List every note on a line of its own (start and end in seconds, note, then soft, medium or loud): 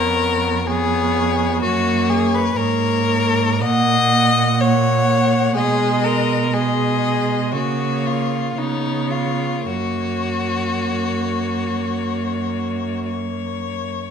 0.00 1.64 F2 medium
0.00 0.63 B3 medium
0.00 0.68 A#4 medium
0.00 0.63 C#5 medium
0.67 1.64 B3 medium
0.67 1.61 G#4 medium
0.67 1.61 C#5 medium
1.62 2.56 F#2 medium
1.62 2.57 A#3 medium
1.62 2.11 F#4 medium
1.62 2.56 C#5 medium
2.09 2.36 G#4 medium
2.34 2.58 B4 medium
2.56 3.62 G#2 medium
2.56 3.59 A#3 medium
2.56 3.63 A#4 medium
2.56 3.60 C#5 medium
3.61 5.55 A#2 medium
3.61 4.58 A#3 medium
3.61 4.62 D#5 loud
3.61 4.59 F#5 medium
4.60 5.57 A#3 medium
4.60 5.55 C#5 medium
4.60 5.58 F#5 medium
5.55 7.55 B2 medium
5.55 6.53 G#3 medium
5.55 6.06 G#4 medium
5.55 6.53 D#5 medium
6.04 6.55 A#4 medium
6.53 7.56 G#3 soft
6.53 7.54 G#4 medium
6.53 7.54 D#5 medium
7.53 8.57 C#3 medium
7.53 8.58 A#3 medium
7.53 8.08 F#4 medium
7.53 8.56 C#5 medium
8.06 8.60 F4 medium
8.56 9.67 C#3 medium
8.56 9.64 B3 soft
8.56 9.13 D#4 medium
8.56 9.62 C#5 medium
9.11 9.68 F4 medium
9.64 13.97 F#2 soft
9.64 13.93 A#3 medium
9.64 13.08 F#4 medium
9.64 13.04 C#5 medium
13.08 14.11 C#5 medium